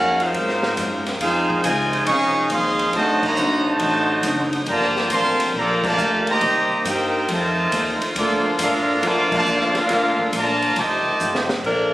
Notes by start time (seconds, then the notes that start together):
Already playing: F2 C#3 D#3 F#3 A#3 C#4 F4 F#4 A#4 F5 F#5
0.20 F#3 C4 D#4 F4 A#4 C5 F5, ride
0.34 G#2 C3 F#3 A#3 C4 F4, kick, ride
0.49 snare
0.63 snare
0.77 F#2 G#2 F#3 C4 F4, kick, hi-hat pedal, ride
1.06 snare, ride
1.20 F2 C#3 D#3 F3 G#3 C4 D#4 F4 G#4 C5 F5, kick, ride
1.50 kick
1.64 C#2 C3 C#3 F3 G#3 C4 D#4 F4 C5 D#5 G#5, kick, hi-hat pedal, ride
1.93 ride
2.06 C2 C#3 F3 G#3 C4 C#4 D#4 G#4 D#5 F5 C#6, kick, ride
2.50 D#2 C#3 F3 G#3 C4 D#4 G#4 D#5 F5 C6, kick, hi-hat pedal, ride
2.79 ride
2.93 D2 C3 D3 F#3 A3 C4 D#4 F#4 C5 D#5 A5, kick, ride
2.97 D#4
3.23 C3 F#3 A#3 F#4 C5 D#5 A#5, muted upright bass stroke, kick, crash
3.36 C2 D3 F#3 C4 D#4, hi-hat pedal
3.68 C3 F#3 A3 F#4 C5 D#5 A5
3.79 A1 D3 F#3 C4 D#4, kick, ride
4.23 F#1 D3 F#3 C4 D#4, kick, hi-hat pedal, ride
4.53 ride
4.66 G1 D3 F3 G3 A#3 F4 G4 D5 A5 A#5, kick, ride
4.71 A4
4.82 snare
4.96 snare
5.10 A1 D3 F3 G3 A#3 C4 F4 A4 A#4 F5 A5 C6, kick, hi-hat pedal, ride
5.40 muted upright bass stroke, ride
5.54 A#1 D3 F3 G3 A#3 F4 A4 D5, kick
5.58 A#5
5.84 D3 F3 A#3 F4 A#4 D5 A5, kick, crash
5.98 D2 G3 A#3 F4 A4, hi-hat pedal
6.27 D#3 G3 A#3 C5 D#5 A#5, ride
6.31 G4
6.41 C2 C3 D#3 A#3 C4 D#4 G4, kick, ride
6.70 muted upright bass stroke
6.85 G2 C3 A#3 D#4 G4 G5, kick, hi-hat pedal, ride
6.89 A#4 C5
7.28 F2 C3 D#3 A3 C4 F4 C5, kick, ride
7.32 D#5 A5
7.72 D#2 F2 D#3 A3 C4, kick, hi-hat pedal, ride
8.02 muted upright bass stroke, ride
8.15 D2 A#2 D3 F3 A3 A#3 D4 F4 A4 D5, kick, ride
8.45 muted upright bass stroke
8.59 G2 A#2 F3 A3 A#3 D4 F4 A4 A#4 F5, kick, hi-hat pedal, ride
9.03 F2 A#2 D3 F3 A3 D4 F4 A#4 D5, kick, ride
9.07 A5
9.32 D3 F3 A#3, kick, crash
9.37 F4 A#4 D5 A5
9.46 D#2 A#2 F3 A3 D4, hi-hat pedal
9.60 snare
9.74 A#3 D4 F4, snare, ride
9.79 D4 A4 A#4 F5
9.89 D2 A#2 F3 A3, kick, snare, ride
9.93 D4
10.19 kick
10.33 A#1 A#2 D3 F3 A3 A#3 D4 A5 A#5, kick, hi-hat pedal, ride
10.37 F4 D5
10.62 ride
10.76 C2 C3 D#3 F3 G3 A3 D#4 F4 G4 C5 D#5 A5, kick, ride
10.80 G4
11.07 muted upright bass stroke
11.20 G1 F3 A3 D#4 G4, hi-hat pedal
11.35 snare
11.49 snare
11.64 A#1 F3 D4 A4 A#4, kick, crash